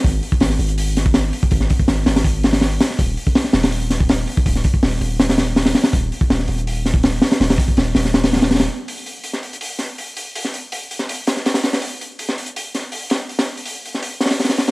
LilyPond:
<<
  \new Staff \with { instrumentName = "808-style bass" } { \clef bass \time 4/4 \key dis \minor \tempo 4 = 163 gis,,8 r8 gis,,8 gis,,2 r8 | gis,,8 r8 gis,,8 gis,,2 r8 | dis,,8 r4 dis,,2 r8 | dis,,8 r8 dis,,8 dis,,2 r8 |
dis,,8 r8 dis,,8 dis,,2 r8 | dis,,8 r8 dis,,8 dis,,2 r8 | r1 | r1 |
r1 | r1 | }
  \new DrumStaff \with { instrumentName = "Drums" } \drummode { \time 4/4 <hho bd>8 hho16 bd16 <hho sn>16 sn16 hho16 hh16 hho8 <hho sn>16 bd16 <hho sn>8 hho16 bd16 | <hho bd>16 sn16 <hho bd>16 bd16 <hho sn>8 <hho sn>16 <hho sn>16 <hho bd>8 <hho sn>16 <hho sn>16 <hho sn>16 hho16 <hho sn>16 sn16 | <hho bd>8 hho16 bd16 <hho sn>16 sn16 <hho sn>16 <hho sn>16 hho8 <hho sn>16 bd16 <hho sn>8 hho16 bd16 | <hho bd>16 sn16 <hho bd>16 bd16 <hho sn>8 hho8 <hho sn>16 <hho sn>16 <hho sn>8 <hho sn>16 <hho sn>16 <hho sn>16 <hho sn>16 |
<hho bd>8 hho16 bd16 <hho sn>16 sn16 hho16 hh16 hho8 <hho sn>16 bd16 <hho sn>8 <hho sn>16 <hho sn>16 | <hho sn>16 <hho sn>16 <hho bd>16 bd16 <hho sn>8 <hho sn>16 sn16 <hho sn>16 <hho sn>16 <hho sn>32 <hho sn>32 <hho sn>16 <hho sn>32 <hho sn>32 <hho sn>8. | hho8 hho8 hho16 sn16 hho16 hh16 hho8 <hho sn>8 hho8 hho8 | hho16 sn16 hho8 hho8 hho16 sn16 hho8 <hho sn>16 sn16 <hho sn>16 <hho sn>16 <hho sn>16 <hho sn>16 |
hho8 hho8 hho16 sn16 hho16 hh16 hho8 <hho sn>8 hho8 <hho sn>8 | hho16 <hho sn>8 hho16 hho8 hho16 sn16 hho8 <hho sn>32 <hho sn>32 <hho sn>16 <hho sn>32 <hho sn>32 <hho sn>16 <hho sn>16 hho16 | }
>>